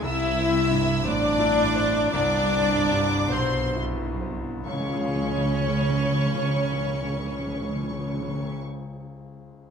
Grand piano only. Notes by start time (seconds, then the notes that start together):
0.03 C2
0.38 C4
0.71 G2
1.05 C5
1.39 E4
1.75 C5
2.13 C2
2.52 C4
2.92 G2
3.32 C5
3.76 E4
4.21 C5
4.65 C#2
4.72 C#3
4.79 G#3
4.86 F4
4.93 G#4
5.00 F5